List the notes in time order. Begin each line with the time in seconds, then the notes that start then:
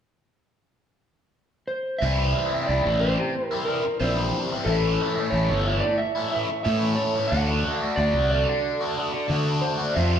1.67 C5
1.98 C2 C3 E5
2.03 E3 G3 C4 E4 C5 G5 C6
2.34 E3 G3 C4 E4
2.51 G3 C4 E4
2.66 C2 C3 E3 G3 C4 D5
2.71 E4
2.85 A1
3.00 E3 G3 C4 C5
3.05 E4
3.18 muted overdriven electric guitar stroke
3.47 E4 A#4
3.53 G3 C4
3.65 E3 G3 A#4
3.69 C4 E4
3.85 muted overdriven electric guitar stroke
4.00 A#1 C3 E3 G3 C4 E4 C5
4.52 G3 C4 E4
4.65 A1 A2 E3 A3 C#4 A4 A5 C#6
4.69 E4 C#5
5.00 E3 A3 C#4 E4
5.16 A3 C#4 E4
5.30 A1 A2 E3 C#5
5.34 A3 C#4 E4
5.50 G1
5.66 E3 A3 C#4 E4
5.80 D5, muted overdriven electric guitar stroke
5.98 E5
6.15 A3 C#4 E4
6.31 E3 A3 C#4 E4 E5
6.50 muted overdriven electric guitar stroke
6.63 A2 E3 A3 C#4 E5
6.67 E4
6.95 C#5
7.15 A3 C#4 E4
7.27 F#5
7.32 D2 D3 A3 D4 F#4 D5 D6
7.66 D3 A3 D4 F#4
7.80 D4 F#4 E5
7.85 A3
7.96 D2 D3 A3 D5
8.00 D4 F#4
8.13 C2
8.31 D3 A3 D4 F#4 D5
8.49 muted overdriven electric guitar stroke
8.81 A3 D4 F#4
8.97 D3 A3 D4 F#4
9.13 muted overdriven electric guitar stroke
9.28 D3 A3 D4 F#4
9.61 C5
9.78 A3 D4 F#4
9.95 F2 C3 F3 A3 C4 F4 C5 E5 C6